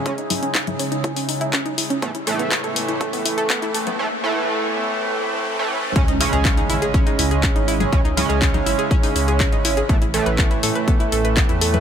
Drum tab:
HH |xxoxxxoxxooxxxox|xxoxxxoxxooxxxox|----------------|xxoxxxoxxxoxxxox|
CP |----x-------x---|----x-------x---|----------------|----x-------x---|
CG |--O--O----------|---------------O|----------------|---------------O|
BD |o---o---o---o---|o---o---o---o---|----------------|o---o---o---o---|

HH |xxoxxxoxxooxxxox|xxoxxxoxxxoxxxo-|
CP |----x-------x---|----x-------x---|
CG |--O--O----------|---------------O|
BD |o---o---o---o---|o---o---o---o---|